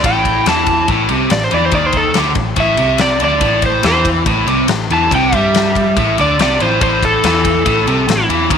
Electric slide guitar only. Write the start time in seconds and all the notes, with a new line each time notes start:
0.06 G5
0.49 A5
1.32 D5
1.44 C5
1.54 D5
1.65 C5
1.75 D5
1.86 C5
1.97 A4
2.60 E5
3.01 D5
3.24 D5
3.66 C5
3.87 C5
4.93 A5
5.15 G5
5.35 E5
6.21 D5
6.42 D5
6.62 C5
6.83 C5
7.05 A4